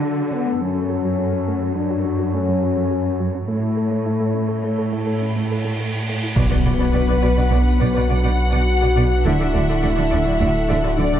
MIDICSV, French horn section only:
0, 0, Header, 1, 2, 480
1, 0, Start_track
1, 0, Key_signature, 2, "minor"
1, 0, Tempo, 576923
1, 496, Time_signature, 5, 2, 24, 8
1, 9317, End_track
2, 0, Start_track
2, 0, Title_t, "French horn section"
2, 0, Program_c, 0, 60
2, 0, Note_on_c, 0, 62, 77
2, 266, Note_off_c, 0, 62, 0
2, 272, Note_on_c, 0, 59, 68
2, 504, Note_off_c, 0, 59, 0
2, 512, Note_on_c, 0, 61, 69
2, 1453, Note_on_c, 0, 62, 61
2, 1464, Note_off_c, 0, 61, 0
2, 1925, Note_off_c, 0, 62, 0
2, 1936, Note_on_c, 0, 61, 68
2, 2751, Note_off_c, 0, 61, 0
2, 2892, Note_on_c, 0, 57, 61
2, 4781, Note_off_c, 0, 57, 0
2, 5290, Note_on_c, 0, 59, 71
2, 6700, Note_off_c, 0, 59, 0
2, 6737, Note_on_c, 0, 66, 75
2, 7697, Note_off_c, 0, 66, 0
2, 7702, Note_on_c, 0, 64, 88
2, 9110, Note_off_c, 0, 64, 0
2, 9135, Note_on_c, 0, 62, 75
2, 9317, Note_off_c, 0, 62, 0
2, 9317, End_track
0, 0, End_of_file